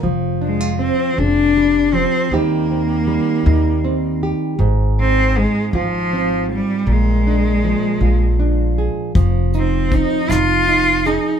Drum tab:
HH |------|------|------|------|
SD |------|------|------|------|
BD |------|------|------|------|

HH |xxxxxx|
SD |---r--|
BD |o-o---|